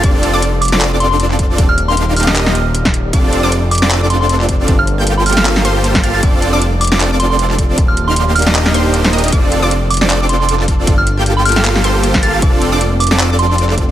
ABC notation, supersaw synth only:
X:1
M:4/4
L:1/16
Q:"Swing 16ths" 1/4=155
K:Fmix
V:1 name="Supersaw synth"
[CDFd]3 [CDFAd] z3 [CDFAd]2 [CDFAd]6- [CDFAd] | z3 [B,DEGf]4 [B,DEGe]3 z6 | [CDFAd]3 [CDFAd] z3 [CDFAd]2 [CDFAd]6- [CDFAd] | z3 [B,FGAg]4 [B,FGAf]3 [B,FGAc]4 [B,FGAf]2 |
[CDFd]3 [CDFAd] z3 [CDFAd]2 [CDFAd]6- [CDFAd] | z3 [B,DEGf]4 [B,DEGe]3 [B,DEGc]4 [B,DEGe]2 | [CA]3 [CDFAd] z3 [CDFAd]2 [CDFAd]6- [CDFAd] | z3 [B,FGAg]4 [B,FGAf]3 [B,FGAc]4 [B,FGAf]2 |
[CDFAd]3 [CDFAd] z3 [CDFAd]2 [CDFAd]6- [CDFAd] |]